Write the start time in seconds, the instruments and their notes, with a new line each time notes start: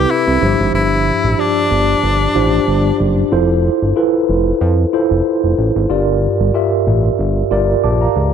Already playing: tine electric piano C3 C4 E4 G4 A4 B4 E5, tenor saxophone G4
0.11 tenor saxophone E4
0.27 analog synth bass C2
0.41 analog synth bass G1, tine electric piano G2 F3 D4 G4 C5
0.60 analog synth bass G#1
0.74 analog synth bass G1, tenor saxophone E4
1.24 analog synth bass A1
1.38 tine electric piano D4 F4 G4 D5, tenor saxophone D4
1.71 analog synth bass G1
2.03 analog synth bass G1
2.35 analog synth bass A1, tine electric piano D4 F4 G4 C5
2.67 analog synth bass G1
3.00 analog synth bass F#1
3.32 analog synth bass F1, tine electric piano E4 F4 A4 C5
3.82 analog synth bass G1
3.96 tine electric piano E4 F4 A4 B4
4.29 analog synth bass F1
4.61 analog synth bass F2
4.93 tine electric piano E4 F4 A4 C5
5.11 analog synth bass F1
5.43 analog synth bass F1
5.58 analog synth bass A1
5.76 analog synth bass G#1
5.89 analog synth bass G1, tine electric piano G2 F4 G4 A#4 D5
6.40 analog synth bass G1
6.54 tine electric piano F4 G4 A#4 E5
6.87 analog synth bass A1
7.19 analog synth bass G1
7.51 analog synth bass G1, tine electric piano F4 G4 A#4 D5
7.84 analog synth bass A#1, tine electric piano A5 D6
8.01 tine electric piano F5 A#5
8.16 analog synth bass C#2